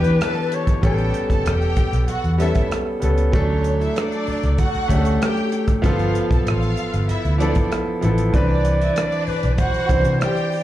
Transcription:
Already playing: E3 B3 D4 G4 B4 G5
0.04 E3, closed hi-hat
0.20 A4 A5, cross-stick, closed hi-hat
0.52 C#5, closed hi-hat
0.67 kick, closed hi-hat
0.82 A1 G3 B3 C#4 G4 A4 G5, kick, closed hi-hat
0.86 A4
0.98 closed hi-hat
1.14 closed hi-hat
1.30 F#1 A4 A5, kick, closed hi-hat
1.45 E1 G4 G5, cross-stick, closed hi-hat
1.62 closed hi-hat
1.76 kick, closed hi-hat
1.93 B1, cross-stick, closed hi-hat
2.08 F#4 F#5, muted fingered electric bass stroke, closed hi-hat
2.24 E2, closed hi-hat
2.38 G3 B3 C#4 E4 A4 E5, closed hi-hat
2.55 kick, closed hi-hat
2.71 cross-stick, closed hi-hat
3.00 C#2 G3 B3 C#4 A4, closed hi-hat
3.18 closed hi-hat
3.32 D2 F#3 A3 C#4 D4 A4 C#5, kick, closed hi-hat
3.64 closed hi-hat
3.80 E4 E5, closed hi-hat
3.96 D4 D5, cross-stick, closed hi-hat
4.12 closed hi-hat
4.27 muted fingered electric bass stroke, open hi-hat
4.43 C#2, cross-stick, closed hi-hat
4.58 F#4 F#5, kick, closed hi-hat
4.75 muted fingered electric bass stroke, closed hi-hat
4.88 D2 A3 C#4 D4 G4, kick, closed hi-hat
4.98 A4
5.05 closed hi-hat
5.21 G4 G5, cross-stick, closed hi-hat
5.37 closed hi-hat
5.52 closed hi-hat
5.68 kick, closed hi-hat
5.82 G1 F3 B3 F4 A4 F5, kick, closed hi-hat
5.99 closed hi-hat
6.15 closed hi-hat
6.31 B1 A4 A5, kick, closed hi-hat
6.45 A1 F4 F5, cross-stick, closed hi-hat
6.63 closed hi-hat
6.77 closed hi-hat
6.94 G1, cross-stick, closed hi-hat
7.09 E4 E5, muted fingered electric bass stroke, closed hi-hat
7.25 D2, closed hi-hat
7.38 F3 B3 D4 E4 A4 D5, closed hi-hat
7.55 kick, closed hi-hat
7.72 cross-stick, closed hi-hat
8.01 A1 F3 B3 E4 A4, closed hi-hat
8.18 closed hi-hat
8.33 C2 E3 C4 D4 B4 D5, kick, closed hi-hat
8.65 closed hi-hat
8.81 E4 E5, closed hi-hat
8.95 D4 D5, cross-stick, closed hi-hat
9.12 closed hi-hat
9.27 B4, muted fingered electric bass stroke, open hi-hat
9.43 B1, cross-stick, closed hi-hat
9.53 D5
9.58 F#4 C5 F#5, kick, closed hi-hat
9.74 closed hi-hat
9.88 C2 E3 C4 D4 C5, kick, closed hi-hat
10.05 C3, closed hi-hat
10.20 G4 D5 G5, cross-stick, closed hi-hat
10.37 closed hi-hat
10.52 open hi-hat

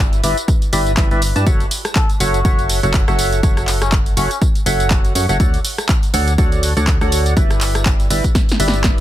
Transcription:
Already playing: G1 E4 G4 B4 D5 E5
0.13 closed hi-hat, tambourine
0.24 G1 E4 G4 B4 D5 E5, open hi-hat, tambourine
0.37 closed hi-hat, tambourine
0.48 kick, closed hi-hat, tambourine
0.62 closed hi-hat, tambourine
0.73 G1 E4 G4 B4 D5 E5, open hi-hat, tambourine
0.87 closed hi-hat, tambourine
0.97 G1 E4 G4 B4 D5 E5, kick, clap, closed hi-hat, tambourine
1.11 G1 E4 G4 B4 D5 E5, closed hi-hat, tambourine
1.22 open hi-hat, tambourine
1.36 G2 E4 G4 B4 D5 A5, closed hi-hat, tambourine
1.47 F#1 F#4 A4 C#5 E5 F#5, kick, closed hi-hat, tambourine
1.60 closed hi-hat, tambourine
1.71 open hi-hat, tambourine
1.85 cross-stick, closed hi-hat, tambourine
1.96 A4, kick, clap, closed hi-hat, tambourine
2.10 closed hi-hat, tambourine
2.20 F#1 F#4 A4 C#5 E5 F#5, open hi-hat, tambourine
2.34 closed hi-hat, tambourine
2.45 F#1 F#4 A4 C#5 E5 F#5, kick, closed hi-hat, tambourine
2.59 closed hi-hat, tambourine
2.69 open hi-hat, tambourine
2.83 F#1 F#4 A4 C#5 E5 F#5, closed hi-hat, tambourine
2.94 kick, clap, closed hi-hat, tambourine
3.08 F#1 F#4 A4 C#5 E5 F#5, cross-stick, closed hi-hat, tambourine
3.19 open hi-hat, tambourine
3.32 closed hi-hat, tambourine
3.43 F#1 F#4 A4 C#5 F#5, kick, closed hi-hat, tambourine
3.57 cross-stick, closed hi-hat, tambourine
3.68 clap, open hi-hat, tambourine
3.82 C#4, cross-stick, closed hi-hat, tambourine
3.92 kick, clap, closed hi-hat, tambourine
4.06 closed hi-hat, tambourine
4.17 F#1 C#4 F#4 A4 C#5 E5 F#5, open hi-hat, tambourine
4.31 C#4, closed hi-hat, tambourine
4.42 kick, closed hi-hat, tambourine
4.55 closed hi-hat, tambourine
4.66 F#1 F#4 A4 C#5 E5 F#5, open hi-hat, tambourine
4.80 closed hi-hat, tambourine
4.91 kick, clap, closed hi-hat, tambourine
5.05 closed hi-hat, tambourine
5.15 F#2 F#4 A4 C#5 E5 F#5, open hi-hat, tambourine
5.29 F#1 F#4 A4 C#5 E5 F#5, closed hi-hat, tambourine
5.40 D2 F#4 A4 C#5 D5 F#5, kick, closed hi-hat, tambourine
5.54 closed hi-hat, tambourine
5.65 open hi-hat, tambourine
5.78 cross-stick, closed hi-hat, tambourine
5.89 kick, clap, closed hi-hat, tambourine
6.03 closed hi-hat, tambourine
6.14 D2 F#4 A4 C#5 D5 F#5, open hi-hat, tambourine
6.28 closed hi-hat, tambourine
6.38 D2 F#4 A4 C#5 D5 F#5, kick, closed hi-hat, tambourine
6.52 closed hi-hat, tambourine
6.63 open hi-hat, tambourine
6.77 D2 F#4 A4 C#5 D5 F#5, closed hi-hat, tambourine
6.87 kick, clap, closed hi-hat, tambourine
7.01 D2 F#4 A4 C#5 D5 F#5, cross-stick, closed hi-hat, tambourine
7.12 open hi-hat, tambourine
7.26 closed hi-hat, tambourine
7.37 G1 E4 G4 B4 D5 E5, kick, closed hi-hat, tambourine
7.50 cross-stick, closed hi-hat, tambourine
7.61 clap, open hi-hat, tambourine
7.75 cross-stick, closed hi-hat, tambourine
7.86 kick, clap, closed hi-hat, tambourine
8.00 closed hi-hat, tambourine
8.10 G1 E4 G4 B4 D5 E5, open hi-hat, tambourine
8.24 kick, closed hi-hat, tambourine
8.35 kick, snare, closed hi-hat, tambourine
8.49 snare, closed hi-hat, tambourine
8.60 G1 E4 G4 B4 D5 E5, open hi-hat, tambourine
8.68 snare
8.74 closed hi-hat, tambourine
8.84 kick, snare, clap, closed hi-hat, tambourine

